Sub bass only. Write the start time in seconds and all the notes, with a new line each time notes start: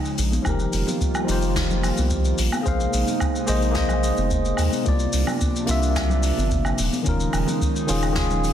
0.19 A#1
0.46 F1
0.73 F1
1.29 F1
1.99 C2
2.39 A#1
2.66 A#1
2.94 A#1
3.48 A#1
4.18 F1
4.58 D#2
4.87 C2
5.13 C2
5.69 C2
6.38 G1
6.79 D#1
7.07 D#1
7.34 D#1
7.89 D#1